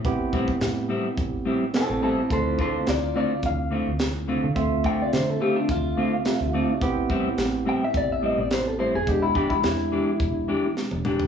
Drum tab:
HH |x---x---x---x---|x---x---x---x---|x---x---x---x---|x---x---x---x---|
SD |----o-------o---|----o-------o---|----o-------o---|----o-------o---|
T1 |----------------|----------------|----------------|----------------|
T2 |----------------|----------------|----------------|----------------|
FT |----------------|----------------|----------------|----------------|
BD |o-oo----o-------|o-o-----o-------|o-o-----o-------|o-o-----o-------|

HH |x---x---x-------|
SD |----o-------o---|
T1 |-------------o--|
T2 |--------------o-|
FT |---------------o|
BD |o-oo----o-------|